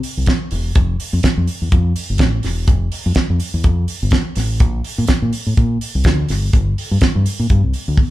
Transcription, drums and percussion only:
0.03 open hi-hat
0.26 kick, snare, closed hi-hat
0.51 open hi-hat
0.75 kick, closed hi-hat
1.00 open hi-hat
1.23 kick, snare, closed hi-hat
1.47 open hi-hat
1.72 kick, closed hi-hat
1.96 open hi-hat
2.18 kick, snare, closed hi-hat
2.43 snare, open hi-hat
2.68 kick, closed hi-hat
2.92 open hi-hat
3.15 kick, snare, closed hi-hat
3.40 open hi-hat
3.64 kick, closed hi-hat
3.88 open hi-hat
4.11 kick, snare, closed hi-hat
4.35 snare, open hi-hat
4.60 kick, closed hi-hat
4.84 open hi-hat
5.07 kick, snare, closed hi-hat
5.33 open hi-hat
5.57 kick, closed hi-hat
5.81 open hi-hat
6.04 kick, snare, closed hi-hat
6.28 snare, open hi-hat
6.53 kick, closed hi-hat
6.78 open hi-hat
7.01 kick, snare, closed hi-hat
7.26 open hi-hat
7.50 kick, closed hi-hat
7.73 open hi-hat
7.98 kick, high tom

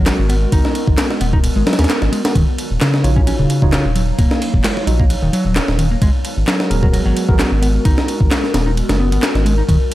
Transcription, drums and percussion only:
0.06 snare, clap, ride
0.30 ride
0.52 kick, ride
0.65 snare
0.75 ride
0.88 kick
0.98 snare, clap, ride
1.10 snare
1.21 ride
1.33 kick
1.44 ride
1.67 snare, ride
1.73 snare, ride
1.79 snare, ride
1.84 snare, ride
1.89 snare, clap, ride
2.02 snare
2.13 ride
2.25 snare, ride
2.35 kick, ride
2.58 ride
2.81 snare, clap, ride
2.94 snare
3.04 ride
3.17 kick
3.27 ride
3.50 ride
3.62 kick
3.73 snare, clap, ride
3.96 ride
4.19 kick, ride
4.31 snare
4.42 ride
4.54 kick
4.64 snare, clap, ride
4.77 snare
4.87 ride
5.00 kick
5.10 ride
5.33 ride
5.56 snare, clap, ride
5.68 snare
5.79 ride
6.02 kick, ride
6.25 ride
6.47 snare, clap, ride
6.60 snare
6.71 ride
6.83 kick
6.94 ride
7.17 ride
7.29 kick
7.39 snare, clap, ride
7.63 ride
7.85 kick, ride
7.98 snare
8.08 ride
8.21 kick
8.31 snare, clap, ride
8.44 snare
8.54 snare, ride
8.77 ride
8.89 snare, ride
9.12 ride
9.23 snare, clap, ride
9.35 snare
9.46 ride
9.69 kick, ride

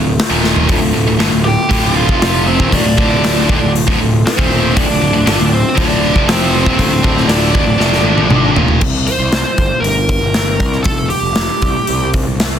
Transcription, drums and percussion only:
0.19 snare, open hi-hat
0.44 snare
0.56 floor tom
0.69 kick, open hi-hat
1.20 snare, open hi-hat
1.71 kick, open hi-hat
2.09 kick
2.22 snare, open hi-hat
2.60 kick
2.72 kick, open hi-hat
2.98 kick
3.24 snare, open hi-hat
3.49 kick
3.76 open hi-hat
3.88 kick
4.27 snare, open hi-hat
4.39 kick
4.77 kick, open hi-hat
5.27 snare, open hi-hat
5.77 kick, open hi-hat
6.16 kick
6.29 snare, open hi-hat
6.66 kick
6.79 kick, open hi-hat
7.04 kick
7.17 snare
7.29 snare, open hi-hat
7.55 kick
7.80 snare
7.93 snare
8.18 high tom
8.30 mid tom
8.56 floor tom
8.68 floor tom
8.81 kick, crash
9.07 open hi-hat
9.32 snare, open hi-hat
9.58 kick, open hi-hat
9.84 open hi-hat
10.09 kick, open hi-hat
10.34 snare, open hi-hat
10.60 kick, open hi-hat
10.73 snare
10.84 kick, open hi-hat
11.10 open hi-hat
11.36 snare, open hi-hat
11.62 kick, open hi-hat
11.87 open hi-hat
12.14 kick, open hi-hat
12.40 snare, open hi-hat

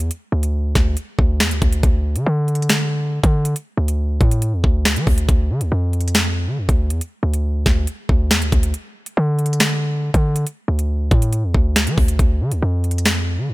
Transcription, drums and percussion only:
0.11 closed hi-hat
0.43 closed hi-hat
0.75 kick, snare, closed hi-hat
0.97 closed hi-hat
1.19 kick
1.40 snare, closed hi-hat
1.51 closed hi-hat
1.62 kick, closed hi-hat
1.73 closed hi-hat
1.83 kick, closed hi-hat
2.16 closed hi-hat
2.48 closed hi-hat
2.55 closed hi-hat
2.62 closed hi-hat
2.69 snare, closed hi-hat
3.23 kick, closed hi-hat
3.45 closed hi-hat
3.56 closed hi-hat
3.88 closed hi-hat
4.21 kick, closed hi-hat
4.31 closed hi-hat
4.42 closed hi-hat
4.64 kick
4.85 snare, closed hi-hat
4.96 closed hi-hat
5.07 kick, open hi-hat
5.18 closed hi-hat
5.29 kick, closed hi-hat
5.61 closed hi-hat
5.93 closed hi-hat
6.01 closed hi-hat
6.08 closed hi-hat
6.15 snare, closed hi-hat
6.69 kick, closed hi-hat
6.90 closed hi-hat
7.01 closed hi-hat
7.34 closed hi-hat
7.66 kick, snare, closed hi-hat
7.87 closed hi-hat
8.09 kick
8.31 snare, closed hi-hat
8.42 closed hi-hat
8.52 kick, closed hi-hat
8.63 closed hi-hat
8.74 closed hi-hat
9.06 closed hi-hat
9.39 closed hi-hat
9.46 closed hi-hat
9.53 closed hi-hat
9.60 snare, closed hi-hat
10.14 kick, closed hi-hat
10.36 closed hi-hat
10.47 closed hi-hat
10.79 closed hi-hat
11.11 kick, closed hi-hat
11.22 closed hi-hat
11.33 closed hi-hat
11.54 kick
11.76 snare, closed hi-hat
11.87 closed hi-hat
11.98 kick, open hi-hat
12.08 closed hi-hat
12.19 kick, closed hi-hat
12.52 closed hi-hat
12.84 closed hi-hat
12.91 closed hi-hat
12.98 closed hi-hat
13.05 snare, closed hi-hat

